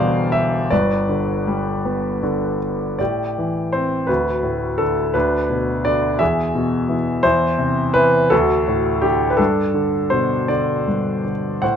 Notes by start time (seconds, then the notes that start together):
Already playing: E1 E2 D3 G3 G4 C5 D5 F5
0.00 B2
0.32 E5
0.70 G1 G2 B4 D5
1.09 D3
1.47 G3
1.85 B3
2.23 D3
2.99 A2 G4 D5
3.38 E3
3.73 C4 C5
4.07 D2 F#4 B4
4.43 A2
4.78 D3 A4
5.14 D2 D4 B4
5.50 B2
5.85 D3 D5
6.19 E2 G#4 E5
6.55 B2
6.89 E3
7.23 E2 E4 C5
7.58 C3
7.94 E3 B4
8.30 D2 F#4 A4
8.67 A2
9.02 D3 G4
9.30 B4
9.37 G2 D4 A4
9.74 D3
10.10 B2 C5
10.48 D3 D5
10.87 G2
11.24 D3
11.62 A2 C5 F#5